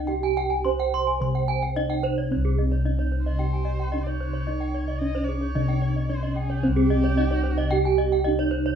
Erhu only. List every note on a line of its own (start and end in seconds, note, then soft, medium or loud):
3.24 4.05 C5 soft
4.03 4.11 D#5 soft
4.09 5.00 C#5 medium
4.99 5.26 D#5 medium
5.25 6.11 C#5 medium
6.10 6.28 C5 soft
6.28 6.36 C5 soft
6.35 6.70 G#4 medium
6.68 8.18 G4 medium